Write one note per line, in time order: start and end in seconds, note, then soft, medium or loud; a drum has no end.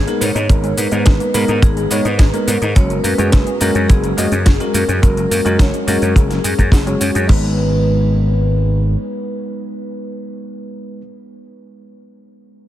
0.00 0.22 G#4 loud
0.07 0.29 G#3 medium
0.07 0.13 A#3 medium
0.07 0.30 B3 medium
0.07 0.30 D#4 medium
0.07 0.30 A#4 loud
0.07 closed hi-hat soft
0.07 shaker soft
0.21 0.32 G#2 medium
0.21 0.35 B3 loud
0.21 0.80 C#5 loud
0.21 open hi-hat loud
0.21 shaker medium
0.35 0.47 G#2 medium
0.35 0.49 D#4 medium
0.35 closed hi-hat soft
0.35 shaker soft
0.49 0.72 G#1 loud
0.49 0.89 G#3 medium
0.49 0.55 G#3 medium
0.49 0.89 B3 medium
0.49 0.89 D#4 medium
0.49 0.89 A#4 loud
0.49 kick loud
0.49 closed hi-hat loud
0.49 shaker soft
0.64 0.73 G#3 medium
0.64 closed hi-hat soft
0.64 shaker soft
0.78 0.89 G#2 medium
0.78 0.83 B3 loud
0.78 1.36 B4 loud
0.78 open hi-hat loud
0.78 shaker medium
0.91 1.03 G#2 medium
0.91 1.31 G#3 medium
0.91 1.31 B3 medium
0.91 1.01 D#4 medium
0.91 1.31 D#4 medium
0.91 1.32 B4 loud
0.91 closed hi-hat soft
0.91 shaker soft
1.06 1.18 G#1 medium
1.06 1.12 G#3 loud
1.06 kick loud
1.06 snare loud
1.06 closed hi-hat medium
1.06 shaker soft
1.20 1.26 A#3 medium
1.20 closed hi-hat soft
1.20 shaker soft
1.34 1.46 G#2 loud
1.34 1.88 G#3 loud
1.34 1.48 B3 loud
1.34 1.88 B3 medium
1.34 1.88 D#4 medium
1.34 1.64 A#4 medium
1.34 1.88 A#4 loud
1.34 open hi-hat loud
1.34 shaker medium
1.48 1.60 G#2 medium
1.48 1.62 D#4 medium
1.48 closed hi-hat soft
1.48 shaker soft
1.62 1.85 G#1 medium
1.62 1.68 G#3 medium
1.62 1.92 G#4 medium
1.62 kick loud
1.62 closed hi-hat medium
1.62 shaker soft
1.77 1.86 G#3 medium
1.77 closed hi-hat soft
1.77 shaker soft
1.90 2.02 G#2 medium
1.90 2.05 G#3 medium
1.90 1.97 B3 loud
1.90 2.05 B3 medium
1.90 2.05 D#4 medium
1.90 2.49 B4 loud
1.90 2.06 C#5 loud
1.90 open hi-hat loud
1.90 shaker medium
2.05 2.21 G#2 medium
2.05 2.15 D#4 medium
2.05 closed hi-hat soft
2.05 shaker soft
2.19 2.31 G#1 medium
2.19 2.25 G#3 loud
2.19 kick loud
2.19 snare loud
2.19 closed hi-hat loud
2.19 shaker soft
2.33 2.56 G#3 medium
2.33 2.39 A#3 medium
2.33 2.56 B3 medium
2.33 2.56 D#4 medium
2.33 2.56 A#4 loud
2.33 closed hi-hat soft
2.33 shaker soft
2.47 2.59 G#2 medium
2.47 2.61 B3 loud
2.47 2.77 A#4 loud
2.47 open hi-hat loud
2.47 shaker medium
2.62 2.73 G#2 medium
2.62 2.75 D#4 medium
2.62 closed hi-hat soft
2.62 shaker soft
2.75 2.98 F#1 loud
2.75 2.82 F#3 medium
2.75 3.15 G#3 medium
2.75 3.15 C#4 medium
2.75 3.15 F#4 medium
2.75 3.15 A#4 loud
2.75 2.88 C#5 loud
2.75 kick loud
2.75 closed hi-hat loud
2.75 shaker soft
2.90 2.99 F#3 medium
2.90 closed hi-hat soft
2.90 shaker soft
3.04 3.15 F#2 medium
3.04 3.10 A#3 medium
3.04 3.63 B4 loud
3.04 open hi-hat medium
3.04 shaker medium
3.18 3.30 F#2 medium
3.18 3.57 G#3 medium
3.18 3.28 C#4 medium
3.18 3.58 C#4 medium
3.18 3.58 F#4 medium
3.18 3.58 G#4 loud
3.18 closed hi-hat soft
3.18 shaker soft
3.32 3.44 F#1 medium
3.32 3.38 F#3 loud
3.32 kick loud
3.32 snare loud
3.32 closed hi-hat loud
3.32 shaker medium
3.47 3.52 G#3 medium
3.47 closed hi-hat soft
3.47 shaker soft
3.60 3.72 F#2 medium
3.60 4.14 G#3 loud
3.60 3.75 A#3 loud
3.60 4.14 C#4 medium
3.60 4.15 F#4 medium
3.60 3.73 A#4 loud
3.60 4.15 A#4 loud
3.60 open hi-hat loud
3.60 shaker medium
3.75 3.86 F#2 medium
3.75 3.89 C#4 medium
3.75 closed hi-hat soft
3.75 shaker soft
3.88 4.12 F#1 loud
3.88 3.95 F#3 medium
3.88 4.76 G#4 loud
3.88 kick loud
3.88 closed hi-hat loud
3.88 shaker soft
4.03 4.13 F#3 medium
4.03 closed hi-hat soft
4.03 shaker soft
4.17 4.29 F#2 medium
4.17 4.31 G#3 loud
4.17 4.23 A#3 loud
4.17 4.31 C#4 medium
4.17 4.32 F#4 medium
4.17 4.32 D#5 loud
4.17 open hi-hat loud
4.17 shaker medium
4.32 4.48 F#2 medium
4.32 4.41 C#4 medium
4.32 closed hi-hat soft
4.32 shaker soft
4.46 4.57 F#1 medium
4.46 4.51 F#3 loud
4.46 kick loud
4.46 snare loud
4.46 closed hi-hat medium
4.46 shaker soft
4.60 4.82 G#3 medium
4.60 4.66 G#3 medium
4.60 4.82 C#4 medium
4.60 4.82 F#4 medium
4.60 4.82 A#4 loud
4.60 closed hi-hat soft
4.60 shaker soft
4.74 4.85 F#2 medium
4.74 4.88 A#3 loud
4.74 5.61 A#4 loud
4.74 open hi-hat loud
4.74 shaker medium
4.88 5.00 F#2 medium
4.88 5.02 C#4 medium
4.88 closed hi-hat soft
4.88 shaker soft
5.02 5.25 F#1 loud
5.02 5.08 F#3 medium
5.02 5.42 G#3 medium
5.02 5.42 C#4 medium
5.02 5.42 F#4 medium
5.02 5.42 A#4 medium
5.02 kick loud
5.02 closed hi-hat loud
5.02 shaker soft
5.17 5.26 F#3 medium
5.17 closed hi-hat soft
5.17 shaker soft
5.31 5.42 F#2 medium
5.31 5.37 A#3 loud
5.31 open hi-hat loud
5.31 shaker medium
5.45 5.56 F#2 medium
5.45 5.84 G#3 loud
5.45 5.84 C#4 medium
5.45 5.55 C#4 medium
5.45 5.84 F#4 medium
5.45 5.84 A#4 loud
5.45 closed hi-hat soft
5.45 shaker soft
5.59 5.70 F#1 medium
5.59 5.65 F#3 loud
5.59 5.88 C#5 loud
5.59 kick loud
5.59 snare loud
5.59 closed hi-hat loud
5.59 shaker soft
5.74 5.79 G#3 medium
5.74 closed hi-hat soft
5.74 shaker soft
5.87 5.99 F#2 loud
5.87 6.41 G#3 loud
5.87 6.01 A#3 loud
5.87 6.41 C#4 medium
5.87 6.41 F#4 medium
5.87 6.97 G#4 medium
5.87 6.41 A#4 loud
5.87 open hi-hat loud
5.87 shaker medium
6.02 6.13 F#2 medium
6.02 6.15 C#4 medium
6.02 closed hi-hat soft
6.02 shaker soft
6.16 6.38 F#1 medium
6.16 6.22 F#3 medium
6.16 kick loud
6.16 closed hi-hat loud
6.16 shaker soft
6.30 6.39 F#3 medium
6.30 snare soft
6.30 closed hi-hat soft
6.30 shaker soft
6.44 6.55 F#2 medium
6.44 6.53 G#3 medium
6.44 open hi-hat loud
6.44 shaker medium
6.58 6.70 F#2 loud
6.58 6.68 A#3 medium
6.58 kick medium
6.58 closed hi-hat soft
6.58 shaker soft
6.72 6.94 F#1 medium
6.72 6.82 F#4 medium
6.72 kick loud
6.72 snare loud
6.72 open hi-hat medium
6.72 shaker soft
6.86 7.25 G#3 medium
6.86 6.96 G#3 loud
6.86 7.26 C#4 medium
6.86 7.26 F#4 medium
6.86 7.26 C#5 medium
6.86 closed hi-hat soft
6.86 shaker soft
7.01 7.12 F#2 medium
7.01 7.06 C#4 medium
7.01 open hi-hat loud
7.01 shaker medium
7.15 7.26 F#2 loud
7.15 7.24 G#4 medium
7.15 closed hi-hat soft
7.15 shaker soft
7.27 8.95 G#1 loud
7.27 11.01 G#3 medium
7.27 7.56 G#3 medium
7.27 11.01 B3 medium
7.27 11.02 D#4 medium
7.27 11.01 B4 medium
7.27 11.02 B4 loud
7.27 kick loud
7.27 crash medium